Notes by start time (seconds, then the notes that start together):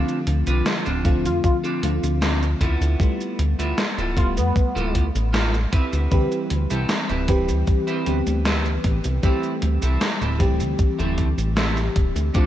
Already playing: D3 F3 A3 C4 D4 F4 A4
0.08 closed hi-hat, cabasa
0.27 D2, closed hi-hat
0.47 C2 C4 D4 F4 B4, closed hi-hat, cabasa
0.66 snare, closed hi-hat, cabasa
0.85 D1 C4 D4 F4 A4, closed hi-hat, cabasa
1.04 D3 F3 A3 C4 F4, kick, closed hi-hat
1.25 F2 F4, closed hi-hat, cabasa
1.44 F4, kick, closed hi-hat, cabasa
1.64 C4 D4 F4 A4, closed hi-hat, cabasa
1.83 D2 D3 F3 A3 C4 F4, closed hi-hat
2.04 D2, closed hi-hat, cabasa
2.21 C4 D4 F4 C5, snare, closed hi-hat, cabasa
2.43 closed hi-hat, cabasa
2.61 D2 B3 E4 F4 A4, kick, closed hi-hat
2.81 D2, closed hi-hat, cabasa
3.00 G3 A3 B3, kick, closed hi-hat, cabasa
3.21 closed hi-hat, cabasa
3.39 D2, closed hi-hat
3.59 D2 B3 E4 F4 A4, closed hi-hat, cabasa
3.78 snare, closed hi-hat, cabasa
3.98 D1 B3 E4 F4 A4, closed hi-hat, cabasa
4.16 G3 A3 B3 F4, kick, closed hi-hat
4.37 F2 B3, closed hi-hat, cabasa
4.56 kick, closed hi-hat, cabasa
4.75 D1 B3 E4 F4 A4, closed hi-hat, cabasa
4.95 D2, kick, closed hi-hat
5.15 A1, closed hi-hat, cabasa
5.33 B3 E4 F4 A4, snare, closed hi-hat, cabasa
5.54 snare, closed hi-hat, cabasa
5.72 C4 E4 G4 B4, kick, closed hi-hat
5.93 D2, closed hi-hat, cabasa
6.10 D2 E3 G3 C4 G4 B4, kick, closed hi-hat, cabasa
6.32 closed hi-hat, cabasa
6.50 D2, closed hi-hat
6.70 C2 C4 E4 G4 A4, closed hi-hat, cabasa
6.89 snare, closed hi-hat, cabasa
7.09 D1 C4 E4 G4 B4, closed hi-hat, cabasa
7.28 E3 G3 C4 G4 B4, kick, closed hi-hat
7.49 D2, closed hi-hat, cabasa
7.67 kick, closed hi-hat, cabasa
7.87 C4 E4 G4 B4, closed hi-hat, cabasa
8.06 D2 E3 G3 B3 C4 G4, closed hi-hat
8.27 D2, closed hi-hat, cabasa
8.45 C4 E4 G4 B4, snare, closed hi-hat, cabasa
8.66 closed hi-hat, cabasa
8.84 A1, muted clean electric guitar stroke, kick, closed hi-hat
9.04 C2, muted clean electric guitar stroke, closed hi-hat, cabasa
9.22 E3 G3 A3 C4 E4 G4 A4, kick, closed hi-hat, cabasa
9.43 closed hi-hat, cabasa
9.62 D2, closed hi-hat
9.82 C2 C4 E4 G4 A4, closed hi-hat, cabasa
10.01 snare, closed hi-hat, cabasa
10.21 D1 C4 E4 G4 A4, closed hi-hat, cabasa
10.38 E3 G3 A3 C4 G4, kick, closed hi-hat
10.60 D2, closed hi-hat, cabasa
10.79 kick, closed hi-hat, cabasa
10.99 D1 C4 E4 G4 A4, closed hi-hat, cabasa
11.18 D2, kick, closed hi-hat
11.38 A1, closed hi-hat, cabasa
11.56 C4 E4 G4 A4, snare, closed hi-hat, cabasa
11.77 snare, closed hi-hat, cabasa
11.95 D1, muted clean electric guitar stroke, kick, closed hi-hat
12.16 D2, muted clean electric guitar stroke, closed hi-hat, cabasa
12.33 D2 D3 F3 A3 C4 D4 F4 A4, kick, closed hi-hat, cabasa